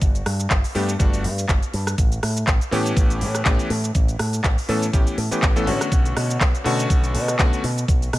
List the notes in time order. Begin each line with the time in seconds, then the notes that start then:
0.01 G1, kick, closed hi-hat, cabasa
0.15 closed hi-hat, cabasa
0.26 G2, cross-stick, open hi-hat
0.40 closed hi-hat, cabasa
0.50 G1, kick, clap, closed hi-hat, cabasa
0.64 open hi-hat, cabasa
0.75 G2 G3 A3 B3 D4 G4, open hi-hat
0.89 closed hi-hat, cabasa
0.99 G1 G3 A3 B3 D4 F#4, kick, closed hi-hat, cabasa
1.13 closed hi-hat, cabasa
1.24 G2, open hi-hat
1.38 closed hi-hat, cabasa
1.49 G1, kick, clap, closed hi-hat, cabasa
1.62 closed hi-hat, cabasa
1.74 G2, open hi-hat
1.87 cross-stick, closed hi-hat, cabasa
1.98 A1, kick, closed hi-hat, cabasa
2.12 closed hi-hat, cabasa
2.23 A2, cross-stick, open hi-hat
2.36 closed hi-hat, cabasa
2.47 A1, kick, clap, closed hi-hat, cabasa
2.61 closed hi-hat, cabasa
2.71 A2 E3 A3 B3 C#4 G4, open hi-hat
2.86 closed hi-hat, cabasa
2.97 A1, kick, closed hi-hat, cabasa
3.10 closed hi-hat, cabasa
3.21 A2, open hi-hat
3.35 cross-stick, closed hi-hat, cabasa
3.45 A1 E3 A3 B3 C#4 G4, kick, clap, closed hi-hat, cabasa
3.59 closed hi-hat, cabasa
3.70 A2, open hi-hat
3.84 closed hi-hat, cabasa
3.95 A1, kick, closed hi-hat, cabasa
4.08 closed hi-hat, cabasa
4.19 A2, cross-stick, open hi-hat
4.33 closed hi-hat, cabasa
4.44 A1, kick, clap, closed hi-hat, cabasa
4.58 open hi-hat, cabasa
4.68 A2 E3 A3 B3 C#4 A4, open hi-hat
4.82 closed hi-hat, cabasa
4.93 A1 E3 A3 B3 C#4 G4, kick, closed hi-hat, cabasa
5.07 closed hi-hat, cabasa
5.18 A2, open hi-hat
5.31 E3 A3 B3 C#4 G4, muted picked electric bass stroke, closed hi-hat, cabasa
5.42 A1, kick, clap, closed hi-hat, cabasa
5.56 E3 A3 B3 C#4 A4, closed hi-hat, cabasa
5.66 A2 D3 A3 B3 C#4 F#4, open hi-hat
5.81 cross-stick, closed hi-hat, cabasa
5.92 B1, kick, closed hi-hat, cabasa
6.05 closed hi-hat, cabasa
6.16 B2, cross-stick, open hi-hat
6.30 closed hi-hat, cabasa
6.41 B1, kick, clap, closed hi-hat, cabasa
6.55 closed hi-hat, cabasa
6.64 B2 D3 A3 B3 C#4 F#4, open hi-hat
6.79 closed hi-hat, cabasa
6.90 B1, kick, closed hi-hat, cabasa
7.04 closed hi-hat, cabasa
7.15 B2, open hi-hat
7.28 cross-stick, closed hi-hat, cabasa
7.39 B1 D3 A3 B3 C#4 F#4, kick, clap, closed hi-hat, cabasa
7.53 closed hi-hat, cabasa
7.64 B2, open hi-hat
7.78 closed hi-hat, cabasa
7.88 B1, kick, closed hi-hat, cabasa
8.02 closed hi-hat, cabasa
8.13 B2, cross-stick, open hi-hat